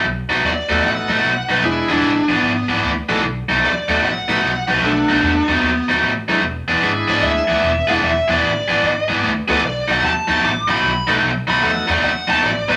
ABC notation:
X:1
M:4/4
L:1/8
Q:"Swing" 1/4=150
K:E
V:1 name="Lead electric guitar"
z2 =d2 f3 B | E =D2 B,2 z3 | z2 =d2 f3 B | =D D2 B,2 z3 |
z3 =d e3 f | e =d4 z2 B | =d f a2 =d' b2 z | z b f =d f a d B |]
V:2 name="Tonewheel organ"
z3 [A,B,DFA]3 z2 | [G,B,=DEG]3 z4 [A,B,^DFA] | z3 [A,B,DFA] z [A,B,DFB] z2 | [A,B,FA]3 z4 [G,B,=DEG] |
z2 [G,B,=DEG]3 z2 [G,B,DEG] | z6 z [A,B,DFA] | z6 z [A,B,DFA] | z2 [A,B,DFA] z4 z |]
V:3 name="Overdriven electric guitar"
z [B,,F,A,D] z [B,,F,A,D] z [B,,F,A,D] z [B,,F,A,D] | z [E,B,=DG] z [E,B,DG] z [E,B,DG] z [E,B,DG] | z [B,,F,A,D] z [B,,F,A,D] z [B,,F,A,D] z [B,,F,A,D] | z [B,,F,A,D] z [B,,F,A,D] z [B,,F,A,D] z [B,,F,A,D] |
z [E,B,=DG] z [E,B,DG] z [E,B,DG] z [E,B,DG] | z [E,B,=DG] z [E,B,DG] z [E,B,DG] z [E,B,DG] | z [B,,F,A,D] z [B,,F,A,D] z [B,,F,A,D] z [B,,F,A,D] | z [B,,F,A,D] z [B,,F,A,D] z [B,,F,A,D] z [B,,F,A,D] |]
V:4 name="Upright bass" clef=bass
B,,, B,,, D,, D,, A,,, A,,, B,,, B,,, | E,,, E,,, A,,, A,,, G,,, G,,, =D,, ^A,,, | B,,, B,,, D,, D,, A,,, A,,, B,,, B,,, | B,,, B,,, E,, E,, D,, D,, A,,, F,, |
E,,, E,,, G,,, G,,, =D,, D,, E,,, E,,, | E,,, E,,, A,,, A,,, G,,, G,,, =D,, D,, | B,,, B,,, D,, D,, A,,, A,,, B,,, B,,, | B,,, B,,, E,, E,, D,, D,, A,,, A,,, |]